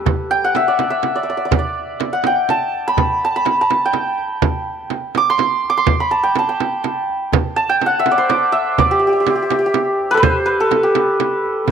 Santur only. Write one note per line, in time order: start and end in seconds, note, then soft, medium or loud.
0.00 0.50 G4 medium
0.00 1.47 A4 medium
0.00 0.87 B4 loud
0.31 0.50 G5 loud
0.44 2.12 F#5 medium
0.56 0.90 E5 medium
0.68 1.15 D5 medium
0.90 3.20 E5 medium
1.16 1.23 D5 medium
1.23 1.29 D5 medium
1.30 1.37 D5 medium
1.37 1.45 D5 medium
1.45 1.53 D5 medium
1.53 1.58 D5 medium
1.59 4.05 D5 medium
2.13 2.33 F#5 medium
2.27 3.85 G5 medium
2.50 3.24 A5 loud
2.88 3.36 B5 loud
3.25 3.61 A5 medium
3.36 5.17 B5 medium
3.61 5.54 A5 medium
3.86 5.93 G5 medium
5.17 5.69 D6 loud
5.30 5.77 C6 medium
5.70 7.32 D6 medium
5.77 6.06 C6 medium
6.00 7.81 B5 medium
6.11 6.38 A5 medium
6.23 6.49 G5 medium
6.39 7.56 A5 medium
6.49 7.69 G5 medium
7.56 9.49 A5 loud
7.69 7.92 G5 loud
7.86 8.97 F#5 medium
8.00 8.52 E5 medium
8.12 8.29 D5 medium
8.18 10.17 C5 medium
8.29 8.79 D5 medium
8.52 10.82 E5 medium
8.79 11.25 D5 medium
8.91 8.99 G4 medium
8.99 9.07 G4 medium
9.07 9.12 G4 medium
9.13 9.20 G4 soft
9.20 9.28 G4 medium
9.28 9.35 G4 soft
9.35 9.42 G4 medium
9.43 9.51 G4 soft
9.51 9.58 G4 medium
9.59 9.66 G4 medium
9.66 10.83 G4 medium
10.11 10.60 A4 medium
10.11 10.17 B4 loud
10.17 10.29 B4 loud
10.23 10.52 C5 loud
10.46 11.71 B4 loud
10.60 11.71 A4 medium
10.83 11.71 G4 medium